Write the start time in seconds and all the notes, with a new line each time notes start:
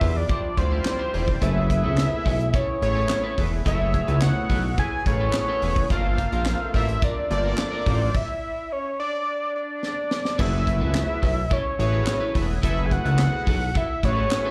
Already playing: C3 F3 G3 D4 E5
0.01 E2 F4 G4 C5, kick, open hi-hat
0.15 D5, muted clean electric guitar stroke
0.29 F4 G4 C5, kick, closed hi-hat
0.44 muted clean electric guitar stroke
0.57 D2 G3 E4 F4 C5 D5, muted clean electric guitar stroke, kick, closed hi-hat
0.71 F4 G4 C5
0.85 muted clean electric guitar stroke, snare, clap, closed hi-hat
0.99 F4 G4 C5
1.13 E1 G3 E4 F4 G4 C5 D5, open hi-hat
1.27 muted clean electric guitar stroke, kick
1.41 F#1 A2 A3 B3 E4 G#4 A4 B4 E5, kick, closed hi-hat
1.70 muted clean electric guitar stroke, kick, closed hi-hat
1.84 C#2 E4 A4 B4
1.97 muted clean electric guitar stroke, snare, clap, closed hi-hat
2.11 muted clean electric guitar stroke
2.25 B1 E4 A4 B4, kick, open hi-hat
2.39 muted clean electric guitar stroke, closed hi-hat
2.53 E4 A4 B4 C#5, kick, closed hi-hat
2.67 muted clean electric guitar stroke
2.81 A1 A3 E4 G#4 C#5, muted clean electric guitar stroke, closed hi-hat
2.95 E4 A4 B4
3.09 muted clean electric guitar stroke, snare, clap, closed hi-hat
3.24 E4 A4 B4
3.37 E1 A3 E4 G#4 A4 B4, kick, open hi-hat
3.52 muted clean electric guitar stroke
3.65 F#1 A3 E4 F#4 G#4 A4 B4 C#5 E5, kick, closed hi-hat
3.94 muted clean electric guitar stroke, kick, closed hi-hat
4.08 C#2 E4 A4 B4, closed hi-hat
4.21 F#5, muted clean electric guitar stroke, snare, clap, closed hi-hat
4.36 muted clean electric guitar stroke
4.50 B1 E4 A4 B4, kick, open hi-hat
4.64 muted clean electric guitar stroke
4.78 E4 A4 B4 G#5, kick, closed hi-hat
4.93 muted clean electric guitar stroke
5.06 A1 A3 E4 G#4 B4 C#5, muted clean electric guitar stroke, kick, closed hi-hat
5.20 E4 A4 B4
5.33 muted clean electric guitar stroke, snare, clap, closed hi-hat
5.48 E4 A4 B4
5.62 E1 A3 E4 G#4 A4 B4, open hi-hat
5.76 muted clean electric guitar stroke, kick
5.90 G1 C3 A#3 C4 F4 A4 A#4 C5 F5, kick, closed hi-hat
6.18 muted clean electric guitar stroke, kick, closed hi-hat
6.32 A#1 C4 F4 A#4, closed hi-hat
6.45 muted clean electric guitar stroke, snare, clap, closed hi-hat
6.60 muted clean electric guitar stroke
6.74 A1 C4 F4 A#4 E5, kick, open hi-hat
6.88 muted clean electric guitar stroke, closed hi-hat
7.02 C4 F4 A#4 D5, kick, closed hi-hat
7.16 muted clean electric guitar stroke
7.30 G1 A#3 F4 A4 C5 D5, muted clean electric guitar stroke, closed hi-hat
7.38 D5
7.44 C4 F4 A#4
7.58 muted clean electric guitar stroke, snare, clap, closed hi-hat
7.72 C4 F4 A#4
7.86 A1 A#3 C4 F4 A4 A#4 C5, kick, open hi-hat
8.01 muted clean electric guitar stroke
8.14 E5, kick, crash
8.72 C#5
9.00 D5
9.56 D5
9.83 snare
10.11 snare
10.25 snare
10.38 F#1 A3 E4 F#4 G#4 A4 B4 E5, kick, crash
10.67 muted clean electric guitar stroke, kick, closed hi-hat
10.80 C#2 E4 A4 B4
10.94 muted clean electric guitar stroke, snare, clap, closed hi-hat
11.08 muted clean electric guitar stroke
11.22 B1 E4 A4 B4, kick, open hi-hat
11.36 muted clean electric guitar stroke
11.50 E4 A4 B4 C#5, kick, closed hi-hat
11.65 muted clean electric guitar stroke
11.79 A1 A3 E4 F#4 G#4 B4 C#5, muted clean electric guitar stroke, closed hi-hat
11.93 E4 A4 B4
12.07 snare, clap, closed hi-hat
12.21 E4 A4 B4
12.34 E1 A3 E4 F#4 G#4 A4 B4, kick, open hi-hat
12.49 muted clean electric guitar stroke
12.62 F#1 A3 E4 F#4 G#4 A4 B4 E5, kick, closed hi-hat
12.70 B4
12.86 G#5
12.91 F#5, muted clean electric guitar stroke, kick, closed hi-hat
13.05 C#2 E4 A4 B4, closed hi-hat
13.18 muted clean electric guitar stroke, snare, clap, closed hi-hat
13.33 muted clean electric guitar stroke
13.46 B1 E4 A4 B4, kick, open hi-hat
13.61 muted clean electric guitar stroke
13.74 E4 A4 B4 E5, kick, closed hi-hat
13.89 muted clean electric guitar stroke
14.03 A1 A3 E4 F#4 G#4 B4 C#5, muted clean electric guitar stroke, kick, closed hi-hat
14.17 E4 A4 B4
14.31 muted clean electric guitar stroke, snare, clap, closed hi-hat
14.45 E4 A4 B4